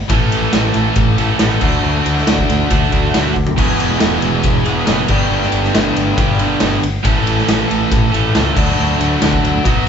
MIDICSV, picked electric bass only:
0, 0, Header, 1, 2, 480
1, 0, Start_track
1, 0, Tempo, 434468
1, 104, Time_signature, 4, 2, 24, 8
1, 10922, End_track
2, 0, Start_track
2, 0, Title_t, "Picked electric bass"
2, 0, Program_c, 0, 34
2, 108, Note_on_c, 0, 33, 96
2, 274, Note_off_c, 0, 33, 0
2, 352, Note_on_c, 0, 33, 86
2, 516, Note_off_c, 0, 33, 0
2, 598, Note_on_c, 0, 33, 86
2, 760, Note_off_c, 0, 33, 0
2, 832, Note_on_c, 0, 33, 90
2, 997, Note_off_c, 0, 33, 0
2, 1063, Note_on_c, 0, 33, 94
2, 1230, Note_off_c, 0, 33, 0
2, 1296, Note_on_c, 0, 33, 88
2, 1466, Note_off_c, 0, 33, 0
2, 1546, Note_on_c, 0, 33, 87
2, 1713, Note_off_c, 0, 33, 0
2, 1790, Note_on_c, 0, 38, 90
2, 1955, Note_off_c, 0, 38, 0
2, 2031, Note_on_c, 0, 38, 86
2, 2196, Note_off_c, 0, 38, 0
2, 2273, Note_on_c, 0, 38, 85
2, 2438, Note_off_c, 0, 38, 0
2, 2518, Note_on_c, 0, 38, 77
2, 2681, Note_off_c, 0, 38, 0
2, 2759, Note_on_c, 0, 38, 89
2, 2921, Note_off_c, 0, 38, 0
2, 2995, Note_on_c, 0, 38, 96
2, 3159, Note_off_c, 0, 38, 0
2, 3233, Note_on_c, 0, 38, 87
2, 3397, Note_off_c, 0, 38, 0
2, 3492, Note_on_c, 0, 38, 86
2, 3650, Note_off_c, 0, 38, 0
2, 3710, Note_on_c, 0, 38, 92
2, 3876, Note_off_c, 0, 38, 0
2, 3959, Note_on_c, 0, 28, 90
2, 4122, Note_off_c, 0, 28, 0
2, 4197, Note_on_c, 0, 28, 89
2, 4360, Note_off_c, 0, 28, 0
2, 4435, Note_on_c, 0, 28, 88
2, 4599, Note_off_c, 0, 28, 0
2, 4670, Note_on_c, 0, 28, 85
2, 4836, Note_off_c, 0, 28, 0
2, 4905, Note_on_c, 0, 28, 92
2, 5072, Note_off_c, 0, 28, 0
2, 5147, Note_on_c, 0, 28, 85
2, 5314, Note_off_c, 0, 28, 0
2, 5387, Note_on_c, 0, 30, 93
2, 5553, Note_off_c, 0, 30, 0
2, 5630, Note_on_c, 0, 31, 92
2, 5796, Note_off_c, 0, 31, 0
2, 5860, Note_on_c, 0, 31, 96
2, 6029, Note_off_c, 0, 31, 0
2, 6108, Note_on_c, 0, 31, 88
2, 6274, Note_off_c, 0, 31, 0
2, 6354, Note_on_c, 0, 31, 84
2, 6518, Note_off_c, 0, 31, 0
2, 6587, Note_on_c, 0, 31, 87
2, 6754, Note_off_c, 0, 31, 0
2, 6824, Note_on_c, 0, 31, 96
2, 6992, Note_off_c, 0, 31, 0
2, 7060, Note_on_c, 0, 31, 90
2, 7229, Note_off_c, 0, 31, 0
2, 7300, Note_on_c, 0, 31, 90
2, 7469, Note_off_c, 0, 31, 0
2, 7538, Note_on_c, 0, 31, 83
2, 7708, Note_off_c, 0, 31, 0
2, 7786, Note_on_c, 0, 33, 96
2, 7953, Note_off_c, 0, 33, 0
2, 8028, Note_on_c, 0, 33, 82
2, 8194, Note_off_c, 0, 33, 0
2, 8270, Note_on_c, 0, 33, 78
2, 8436, Note_off_c, 0, 33, 0
2, 8520, Note_on_c, 0, 33, 90
2, 8682, Note_off_c, 0, 33, 0
2, 8747, Note_on_c, 0, 33, 87
2, 8914, Note_off_c, 0, 33, 0
2, 8984, Note_on_c, 0, 33, 87
2, 9152, Note_off_c, 0, 33, 0
2, 9228, Note_on_c, 0, 37, 93
2, 9394, Note_off_c, 0, 37, 0
2, 9464, Note_on_c, 0, 38, 97
2, 9632, Note_off_c, 0, 38, 0
2, 9712, Note_on_c, 0, 38, 91
2, 9877, Note_off_c, 0, 38, 0
2, 9940, Note_on_c, 0, 38, 87
2, 10109, Note_off_c, 0, 38, 0
2, 10189, Note_on_c, 0, 38, 86
2, 10355, Note_off_c, 0, 38, 0
2, 10426, Note_on_c, 0, 38, 82
2, 10593, Note_off_c, 0, 38, 0
2, 10665, Note_on_c, 0, 35, 92
2, 10832, Note_off_c, 0, 35, 0
2, 10922, End_track
0, 0, End_of_file